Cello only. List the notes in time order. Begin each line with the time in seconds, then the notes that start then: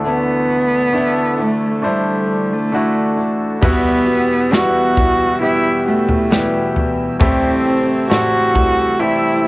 0.07 B3
1.42 A3
1.86 G3
2.53 A3
3.65 B3
4.54 F#4
5.43 E4
5.87 A3
7.22 C4
8.11 F#4
9.00 E4